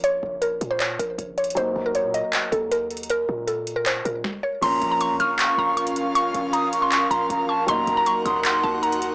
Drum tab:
CC |------------------------------------------------|------------------------------------------------|------------------------------------------------|x-----------------------------------------------|
HH |x-----------x-----x-----x-----x-----x-----x-x-x-|x-----------x-----x-----x-----x-----x-----x-x-x-|x-----------x-----x-----x-----x-----------------|x-----x-----x-----x-----x-----------x--x--x-----|
CP |------------------------x-----------------------|------------------------x-----------------------|------------------------x-----------------------|------------------------x-----------------------|
SD |------------------------------------------------|------------------------------------------------|------------------------------------o-----------|------------------------------------------------|
BD |------o-----------o-----------------o-----------|o-----o-----------------------o-----------------|------o-----------------------o-----o-----------|o-----o-----------o-----------o-----------------|

CC |------------------------------------------------|------------------------------------------------|
HH |x-----x-----x-----x-----x-----x-----x-----------|x-----x-----x-----x-----x-----------x--x--x-----|
CP |------------------------x-----------------------|------------------------x-----------------------|
SD |------------------------------------------------|------------------------------------------------|
BD |------o-----------------------------o-----------|o-----o-----------o-----------o-----------------|